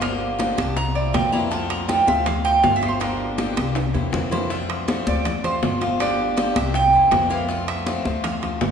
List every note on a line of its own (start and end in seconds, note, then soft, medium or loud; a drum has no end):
0.00 0.52 G1 medium
0.00 0.37 D3 medium
0.00 0.38 F3 medium
0.00 0.39 A#3 medium
0.00 0.39 D4 medium
0.00 0.39 G4 medium
0.00 0.54 F5 medium
0.00 high bongo medium
0.00 high conga soft
0.00 high timbale loud
0.20 high bongo soft
0.20 high conga soft
0.39 0.57 D3 medium
0.39 0.57 F3 medium
0.39 0.58 A#3 medium
0.39 0.57 D4 medium
0.39 0.56 G4 medium
0.39 high bongo medium
0.39 high conga loud
0.39 high timbale medium
0.39 low timbale medium
0.57 1.10 C2 loud
0.57 0.76 A#3 soft
0.57 0.76 D4 soft
0.57 0.76 G4 medium
0.57 0.76 A5 loud
0.57 high bongo soft
0.57 high conga loud
0.57 high timbale medium
0.77 0.95 A#5 loud
0.77 muted steel-string acoustic guitar stroke medium
0.77 high bongo medium
0.77 high conga soft
0.95 1.13 A#3 soft
0.95 1.14 C4 soft
0.95 1.13 E4 soft
0.95 1.14 D5 medium
0.95 high conga soft
1.13 2.02 F2 medium
1.13 1.32 E3 soft
1.13 1.32 A#3 soft
1.13 1.32 C4 medium
1.13 1.32 E4 medium
1.13 1.32 G5 medium
1.13 high bongo medium
1.13 low bongo medium
1.13 high conga medium
1.13 high timbale medium
1.13 low timbale medium
1.32 1.50 E3 medium
1.32 1.51 A#3 medium
1.32 1.51 C4 medium
1.32 1.51 E4 medium
1.32 1.51 A#5 medium
1.32 high bongo soft
1.32 high conga medium
1.51 1.87 D3 medium
1.51 1.88 A3 medium
1.51 1.89 C4 medium
1.51 1.89 F4 medium
1.51 1.70 A5 medium
1.51 high bongo medium
1.51 high conga soft
1.70 1.88 A#5 loud
1.70 high conga soft
1.70 high timbale loud
1.88 2.07 D3 medium
1.88 2.07 A3 medium
1.88 2.07 C4 medium
1.88 2.06 F4 medium
1.88 2.07 G5 medium
1.88 high bongo medium
1.88 high conga medium
1.88 high timbale medium
1.88 low timbale medium
2.07 2.60 D2 medium
2.07 2.25 A3 soft
2.07 2.25 C4 soft
2.07 2.25 F4 medium
2.07 2.26 E5 medium
2.07 high conga loud
2.26 2.44 F5 medium
2.26 muted steel-string acoustic guitar stroke medium
2.26 high bongo medium
2.26 high conga soft
2.26 low conga medium
2.26 high timbale medium
2.44 2.62 A3 soft
2.44 2.63 C4 soft
2.44 2.63 F4 medium
2.44 2.63 G5 loud
2.44 high conga soft
2.44 high timbale medium
2.63 3.51 G1 medium
2.63 2.81 D3 soft
2.63 2.82 A3 soft
2.63 2.81 C4 medium
2.63 2.80 F4 medium
2.63 2.76 F5 medium
2.63 high bongo medium
2.63 low bongo medium
2.63 high conga medium
2.63 low timbale medium
2.76 2.88 E5 medium
2.81 3.00 A3 medium
2.81 3.00 C4 medium
2.81 3.00 F4 medium
2.81 high conga medium
2.81 high timbale medium
2.89 3.01 C5 medium
3.00 3.37 D3 medium
3.00 3.37 F3 medium
3.00 3.38 A#3 medium
3.00 3.38 D4 medium
3.00 3.38 G4 medium
3.00 3.53 A#4 medium
3.00 high bongo medium
3.00 high conga soft
3.00 high timbale loud
3.19 high bongo soft
3.19 high conga soft
3.38 3.56 D3 medium
3.38 3.56 F3 medium
3.38 3.57 A#3 medium
3.38 3.57 D4 medium
3.38 3.55 G4 medium
3.38 high bongo medium
3.38 high conga medium
3.38 high timbale medium
3.38 low timbale medium
3.56 3.92 C2 medium
3.56 3.75 A#3 soft
3.56 3.76 D4 soft
3.56 3.75 G4 medium
3.56 high bongo soft
3.56 high conga loud
3.56 high timbale loud
3.75 muted steel-string acoustic guitar stroke medium
3.75 high bongo medium
3.75 high conga soft
3.75 high timbale medium
3.94 4.12 E2 medium
3.94 4.12 A#3 soft
3.94 4.13 C4 soft
3.94 4.12 E4 soft
3.94 high conga medium
3.94 high timbale medium
4.12 5.01 F2 medium
4.12 4.31 E3 medium
4.12 4.31 A#3 medium
4.12 4.31 C4 medium
4.12 4.30 E4 soft
4.12 high bongo medium
4.12 low bongo loud
4.12 low conga medium
4.31 4.50 E3 medium
4.31 4.50 A#3 medium
4.31 4.50 C4 medium
4.31 4.50 E4 medium
4.31 4.50 C5 medium
4.31 high bongo soft
4.31 low conga loud
4.31 low timbale medium
4.50 4.86 D3 medium
4.50 4.87 A3 medium
4.50 4.88 C4 medium
4.50 4.88 F4 medium
4.50 5.03 E5 loud
4.50 high bongo medium
4.50 high conga soft
4.70 high conga soft
4.70 high timbale loud
4.88 5.06 D3 medium
4.88 5.06 A3 medium
4.88 5.07 C4 medium
4.88 5.06 F4 medium
4.88 high bongo medium
4.88 high conga loud
4.88 high timbale medium
4.88 low timbale medium
5.07 5.59 D2 medium
5.07 5.25 A3 soft
5.07 5.25 C4 soft
5.07 5.25 F4 soft
5.07 5.42 D5 medium
5.07 high conga loud
5.25 muted steel-string acoustic guitar stroke medium
5.25 high bongo medium
5.25 high conga soft
5.25 low conga medium
5.25 high timbale medium
5.44 5.62 A3 soft
5.44 5.63 C4 soft
5.44 5.62 F4 soft
5.44 5.97 C5 loud
5.44 high conga soft
5.44 low conga medium
5.44 high timbale medium
5.63 6.50 G1 medium
5.63 5.81 D3 medium
5.63 5.81 A3 medium
5.63 5.82 C4 medium
5.63 5.80 F4 medium
5.63 high bongo medium
5.63 low bongo medium
5.63 high conga medium
5.63 low timbale medium
5.81 6.00 A3 medium
5.81 6.00 C4 medium
5.81 5.99 F4 medium
5.81 high conga medium
5.81 high timbale medium
6.00 6.35 D3 medium
6.00 6.36 F3 medium
6.00 6.37 A#3 medium
6.00 6.37 D4 medium
6.00 6.38 G4 medium
6.00 6.35 D5 medium
6.00 high bongo medium
6.00 high conga soft
6.00 high timbale medium
6.19 high bongo soft
6.19 high conga soft
6.37 6.55 D3 medium
6.37 6.55 F3 medium
6.37 6.56 A#3 medium
6.37 6.56 D4 medium
6.37 6.55 G4 medium
6.37 high bongo medium
6.37 high conga medium
6.37 high timbale medium
6.37 low timbale medium
6.56 6.91 C2 medium
6.56 6.74 A#3 soft
6.56 6.75 D4 soft
6.56 6.74 G4 medium
6.56 6.75 E5 medium
6.56 high bongo soft
6.56 high conga loud
6.56 high timbale loud
6.74 7.27 G5 loud
6.74 muted steel-string acoustic guitar stroke medium
6.74 high bongo medium
6.74 high conga soft
6.93 7.11 E2 medium
6.93 7.11 A#3 soft
6.93 7.12 C4 soft
6.93 7.11 E4 soft
6.93 high conga soft
7.11 8.00 F2 medium
7.11 7.30 E3 medium
7.11 7.30 A#3 soft
7.11 7.30 C4 medium
7.11 7.28 E4 medium
7.11 high bongo medium
7.11 low bongo medium
7.11 high conga medium
7.11 high timbale loud
7.11 low timbale medium
7.30 7.48 E3 medium
7.30 7.49 A#3 medium
7.30 7.49 C4 medium
7.30 7.48 E4 medium
7.30 7.66 F5 medium
7.30 high bongo soft
7.30 high conga medium
7.49 7.85 D3 medium
7.49 7.86 A3 medium
7.49 7.87 C4 medium
7.49 7.87 F4 medium
7.49 high bongo medium
7.49 high conga soft
7.68 8.20 E5 loud
7.68 high conga soft
7.68 high timbale loud
7.86 8.05 D3 medium
7.86 8.05 A3 medium
7.86 8.05 C4 medium
7.86 8.04 F4 medium
7.86 high bongo medium
7.86 high conga medium
7.86 high timbale medium
7.86 low timbale medium
8.05 8.58 D2 medium
8.05 8.23 A3 soft
8.05 8.23 C4 soft
8.05 8.23 F4 medium
8.05 high conga loud
8.24 8.59 F5 loud
8.24 muted steel-string acoustic guitar stroke medium
8.24 high bongo medium
8.24 high conga soft
8.24 low conga medium
8.24 high timbale medium
8.42 8.61 A3 soft
8.42 8.61 C4 soft
8.42 8.61 F4 medium
8.42 high conga soft
8.42 low conga medium
8.42 high timbale medium
8.61 8.71 G1 medium
8.61 8.71 D3 soft
8.61 8.71 A3 medium
8.61 8.71 C4 medium
8.61 8.71 F4 medium
8.61 high bongo medium
8.61 low bongo loud
8.61 high conga medium
8.61 low timbale medium